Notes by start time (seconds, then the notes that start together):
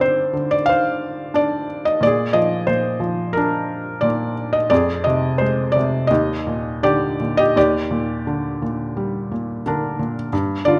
Already playing: G2 D3 D5
0.00 C4 C5
0.33 D3
0.51 D5
0.66 C5 F5
1.34 D4 D5
1.85 D#5
2.01 A#2 D5
2.07 G#4
2.33 F3 D#5
2.67 A#2 C5
3.00 F3
3.33 A#4
3.37 D4
4.01 A#2 D5
4.53 D#5
4.70 F2 G#4 D5
5.04 C3 D#5
5.38 G#3 C5
5.72 C3 D5
6.07 D#2 G4 D#5
6.47 A#2
6.83 D3 G4 D5
7.20 A#2
7.37 G4 D#5
7.56 D#2 G4 D5
7.91 A#2
8.27 D3
8.62 A#2
8.97 G3
9.32 A#2
9.66 D3 D4 A#4
9.99 A#2
10.33 G2
10.65 D3 F4 D5